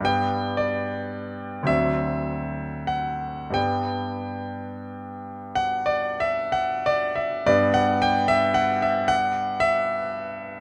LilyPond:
<<
  \new Staff \with { instrumentName = "Grand piano" } { \time 6/8 \key g \major \tempo 4. = 35 g''8 d''4 e''4 fis''8 | g''4. fis''16 d''16 e''16 fis''16 d''16 e''16 | d''16 fis''16 g''16 e''16 fis''16 e''16 fis''8 e''4 | }
  \new Staff \with { instrumentName = "Grand piano" } { \time 6/8 \key g \major <g, g b d'>4. <d, fis c' d'>4. | <g, g b d'>2. | <g, g b d'>2. | }
>>